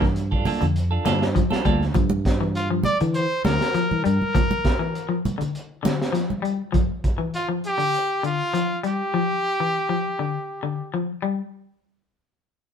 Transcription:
Already playing: G2 A#4
0.01 E3, kick, snare
0.16 closed hi-hat
0.31 D4 F4 A4, kick
0.45 A#3 D4 F4 A4, open hi-hat, high conga, low conga
0.61 F2 D3, closed hi-hat, low conga
0.76 closed hi-hat
0.91 D4 F4 A4
1.05 G2 D3 A#3 D4 F4 A4, snare, closed hi-hat, high conga
1.22 snare
1.35 F3, kick, closed hi-hat
1.50 D4 F4 A4, muted fingered electric bass stroke, snare, high conga
1.65 D2 G3 A#3 D4 F4 A4, kick, closed hi-hat
1.82 snare
1.94 G2 F3, kick, closed hi-hat, low conga
2.10 high conga
2.25 kick, snare, closed hi-hat
2.41 E3
2.55 F4, closed hi-hat
2.71 F3
2.83 D5, closed hi-hat, high conga, low conga
3.00 D3 E3, closed hi-hat
3.14 C5, closed hi-hat
3.45 D2 D3 A#4, snare, closed hi-hat, high conga
3.61 snare
3.74 F3, muted fingered electric bass stroke, closed hi-hat
3.91 E3, high conga
4.04 G2 G3 A#4, closed hi-hat
4.22 high conga
4.35 F3, kick, closed hi-hat, low conga
4.51 high conga
4.65 kick, snare, closed hi-hat
4.79 E3
4.95 closed hi-hat
5.09 F3
5.25 closed hi-hat, high conga, low conga
5.38 D3, closed hi-hat, low conga
5.55 closed hi-hat
5.83 D3, snare, closed hi-hat, high conga
6.02 snare
6.12 F3, snare, closed hi-hat
6.30 high conga
6.42 G3, closed hi-hat
6.72 F3, kick, closed hi-hat
7.04 kick, closed hi-hat
7.18 E3
7.34 F4, closed hi-hat
7.49 F3
7.64 G4, closed hi-hat
7.78 D3, closed hi-hat
7.94 closed hi-hat
8.23 D3 F4, closed hi-hat
8.54 F3, closed hi-hat
8.83 G3, closed hi-hat
8.87 G4
9.14 F3
9.60 E3
9.89 F3
10.19 D3
10.63 D3
10.94 F3
11.22 G3

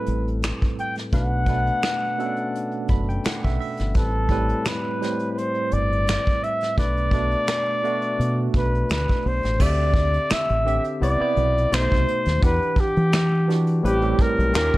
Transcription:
Already playing: A2 G3 C4 A4 B4
0.06 A1, closed hi-hat
0.28 closed hi-hat
0.42 finger snap, snare, closed hi-hat
0.62 kick
0.79 G5, closed hi-hat
0.95 snare, closed hi-hat
1.12 B1 B2 A3 D4 B4 F#5, kick, closed hi-hat
1.46 B2 A3 D4 B4, kick, closed hi-hat
1.67 closed hi-hat
1.82 finger snap, snare, closed hi-hat
2.02 closed hi-hat
2.18 B2 A3 C#4 A4, closed hi-hat
2.26 D4
2.37 closed hi-hat
2.56 closed hi-hat
2.71 closed hi-hat
2.88 F#1 B5, kick, closed hi-hat
3.09 G5, closed hi-hat
3.24 F#5, finger snap, muted fingered electric bass stroke, snare, closed hi-hat
3.44 B1 E5, kick
3.60 E5, open hi-hat
3.77 G1, snare, closed hi-hat
3.95 A1 A2 G3 C4 A4 B4, kick, closed hi-hat
4.29 A2 G3 C4 B4, kick, closed hi-hat
4.49 closed hi-hat
4.65 B4, finger snap, snare, closed hi-hat
5.01 A2 G3 C4 C5, snare, closed hi-hat
5.19 closed hi-hat
5.32 B4
5.38 C5, closed hi-hat
5.54 closed hi-hat
5.71 G1 D5, closed hi-hat
5.92 closed hi-hat
6.07 finger snap, snare, closed hi-hat
6.26 kick, closed hi-hat
6.44 E5, closed hi-hat
6.61 snare, closed hi-hat
6.77 B1 B2 A3 D4 B4 D5, kick, closed hi-hat
6.97 closed hi-hat
7.11 B2 A3 D4 D5, kick, closed hi-hat
7.32 closed hi-hat
7.47 finger snap, snare, closed hi-hat
7.83 B2 A3 D4 F#4, closed hi-hat
8.02 closed hi-hat
8.19 B2, closed hi-hat
8.54 B1 B4, kick, closed hi-hat
8.75 closed hi-hat
8.89 D2 B4, finger snap, snare, closed hi-hat
9.08 kick, closed hi-hat
9.26 B1 C5, open hi-hat
9.43 A1, snare, closed hi-hat
9.59 D2 D3 C4 G4 D5 E5, kick, crash
9.94 kick, closed hi-hat
10.14 closed hi-hat
10.30 E5, finger snap, muted fingered electric bass stroke, snare, closed hi-hat
10.49 A1, closed hi-hat
10.65 D3 C4 G4 E5, closed hi-hat
10.84 closed hi-hat
11.00 C2 C3 B3 E4 D5, closed hi-hat
11.19 B3 C4 E4 D5
11.36 B1, closed hi-hat
11.58 closed hi-hat
11.71 B1 B2 A3 D#4 C5, finger snap, snare, closed hi-hat
11.90 C2, kick, closed hi-hat
12.08 closed hi-hat
12.25 D#2, snare, closed hi-hat
12.41 E2 E3 D4 G4 B4 F#5, kick, closed hi-hat
12.62 closed hi-hat
12.76 G4, muted fingered electric bass stroke, kick, closed hi-hat
12.97 E3, closed hi-hat
13.12 finger snap, snare, closed hi-hat
13.48 E3 D4 F#4 G4, snare, closed hi-hat
13.67 closed hi-hat
13.83 A1 A2 G3 C4 G4 B4, closed hi-hat
14.01 A2 G3 C4 G4, closed hi-hat
14.19 A#4, kick, closed hi-hat
14.39 B1, closed hi-hat
14.53 D#2 D#3 C#4 F4 F#4 A#4, finger snap, snare, closed hi-hat
14.62 G4
14.74 kick

